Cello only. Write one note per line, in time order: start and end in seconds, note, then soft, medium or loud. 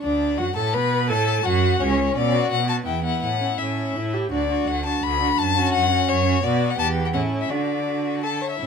0.03 0.40 D2 medium
0.38 0.56 F#2 medium
0.57 0.76 A2 medium
0.74 1.11 B2 medium
1.10 1.44 A2 medium
1.45 1.80 F#2 medium
1.80 2.15 C#2 medium
2.16 2.47 B2 medium
2.51 2.83 B2 medium
2.86 3.18 E2 medium
3.23 3.55 A2 medium
3.60 3.92 A2 medium
3.96 4.28 A2 medium
4.32 4.63 D2 medium
4.68 4.99 D2 medium
5.03 5.34 D2 medium
5.39 5.70 F#2 medium
5.74 6.05 F#2 medium
6.09 6.40 F#2 medium
6.44 6.77 B2 medium
6.79 7.16 E2 medium
7.15 7.49 A2 medium
7.50 8.39 D3 soft
8.60 8.67 A2 medium